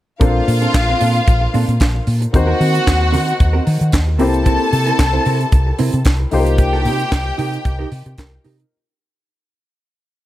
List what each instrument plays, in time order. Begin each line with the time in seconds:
0.20 fingered electric bass A#1, grand piano A#3 D4 F4 A4 C5, clean electric guitar C4 D4 A4, string section F4 F5, kick, closed hi-hat
0.35 muted clean electric guitar stroke
0.48 fingered electric bass A#2, muted clean electric guitar stroke, open hi-hat
0.62 clean electric guitar C4 D4 A4, closed hi-hat
0.74 fingered electric bass A#1, muted clean electric guitar stroke, kick, snare, clap, closed hi-hat
0.88 clean electric guitar C4 D4 A#4
1.00 fingered electric bass A#2, clean electric guitar C4 D4 A4, open hi-hat
1.15 muted clean electric guitar stroke, closed hi-hat
1.27 fingered electric bass A#1, muted clean electric guitar stroke, kick, closed hi-hat
1.41 muted clean electric guitar stroke
1.54 fingered electric bass A#2, clean electric guitar C4 D4 A4, open hi-hat
1.67 fingered electric bass A#2, muted clean electric guitar stroke, closed hi-hat
1.80 fingered electric bass A#1, muted clean electric guitar stroke, kick, snare, clap, closed hi-hat
1.94 muted clean electric guitar stroke
2.07 fingered electric bass A#2, open hi-hat
2.21 muted clean electric guitar stroke, closed hi-hat
2.33 fingered electric bass D#2, grand piano A#3 C4 D#4 F#4 C5, string section F#4 F#5, muted clean electric guitar stroke, kick, closed hi-hat
2.47 clean electric guitar C4 F#4 A#4
2.60 fingered electric bass D#3, clean electric guitar C4 F#4 A#4, open hi-hat
2.74 muted clean electric guitar stroke, closed hi-hat
2.86 fingered electric bass D#2, muted clean electric guitar stroke, kick, snare, clap, closed hi-hat
3.00 muted clean electric guitar stroke
3.12 fingered electric bass D#3, clean electric guitar C4 F#4 A#4, open hi-hat
3.27 muted clean electric guitar stroke, closed hi-hat
3.40 fingered electric bass D#2, muted clean electric guitar stroke, kick, closed hi-hat
3.53 clean electric guitar C4 F#4 A#4
3.66 fingered electric bass D#3, muted clean electric guitar stroke, open hi-hat
3.80 fingered electric bass D#3, muted clean electric guitar stroke, closed hi-hat
3.92 fingered electric bass D#2, muted clean electric guitar stroke, kick, snare, clap, closed hi-hat
4.07 muted clean electric guitar stroke
4.18 fingered electric bass C2, grand piano A#3 C4 E4 G4 C5, clean electric guitar C4 E4 A#4, string section A4 A5, open hi-hat
4.33 muted clean electric guitar stroke, closed hi-hat
4.46 clean electric guitar C4 E4 A#4, kick, closed hi-hat
4.60 muted clean electric guitar stroke
4.73 fingered electric bass C3, muted clean electric guitar stroke, open hi-hat
4.86 clean electric guitar C4 E4 A#4, closed hi-hat
4.99 fingered electric bass C2, kick, snare, clap, closed hi-hat
5.13 clean electric guitar C4 E4 C5
5.25 fingered electric bass C3, clean electric guitar C4 E4 A#4, open hi-hat
5.40 muted clean electric guitar stroke, closed hi-hat
5.52 fingered electric bass C2, muted clean electric guitar stroke, kick, closed hi-hat
5.67 muted clean electric guitar stroke
5.79 fingered electric bass C3, clean electric guitar C4 E4 A#4, open hi-hat
5.93 fingered electric bass C3, muted clean electric guitar stroke, closed hi-hat
6.05 fingered electric bass C2, muted clean electric guitar stroke, kick, snare, clap, closed hi-hat
6.20 muted clean electric guitar stroke
6.31 fingered electric bass C2, grand piano A3 D#4 F4 G4 C5, string section G4 G5, open hi-hat
6.38 grand piano A#3
6.46 muted clean electric guitar stroke, closed hi-hat
6.58 muted clean electric guitar stroke, kick, closed hi-hat
6.73 clean electric guitar D#4 G4 A#4
6.85 fingered electric bass C3, clean electric guitar D#4 G4 A#4, open hi-hat
7.00 closed hi-hat
7.11 fingered electric bass C2, muted clean electric guitar stroke, kick, snare, clap, closed hi-hat
7.26 muted clean electric guitar stroke
7.38 fingered electric bass C3, clean electric guitar D#4 G4 A#4, open hi-hat
7.52 muted clean electric guitar stroke, closed hi-hat
7.65 fingered electric bass C2, muted clean electric guitar stroke, kick, closed hi-hat
7.79 clean electric guitar D#4 G4 A#4
7.92 fingered electric bass C3, open hi-hat
8.06 fingered electric bass C3, muted clean electric guitar stroke, closed hi-hat
8.18 fingered electric bass C2, grand piano A#4, muted clean electric guitar stroke, kick, snare, clap, closed hi-hat
8.32 muted clean electric guitar stroke
8.44 fingered electric bass C3, clean electric guitar D#4 G4 A#4, open hi-hat
8.59 muted clean electric guitar stroke, closed hi-hat